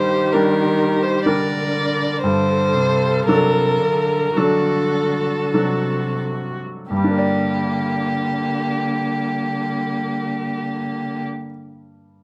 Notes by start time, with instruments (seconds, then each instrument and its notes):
Already playing: grand piano G2 G3 D4 A#4, cello D#3, viola G4, violin C5
0.33 grand piano G3 D4 A#4, violin A#4
1.02 violin C5
1.25 cello D3, grand piano G3 D4 A#4, viola A#4, violin D5
2.21 grand piano G2, cello D3, viola A4, violin C5
2.74 cello C3
3.27 cello C3, grand piano F#3 D4 A4, violin A#4
3.80 cello D3
4.36 cello D3, grand piano F#3 D4 A4, viola F#4, violin A4
5.54 cello C3, grand piano F#3 D4 A4, viola F#4
6.90 grand piano G2, cello D3, viola A#3, violin G4
6.97 grand piano G3
7.04 grand piano D4
7.11 grand piano A#4
7.18 grand piano D5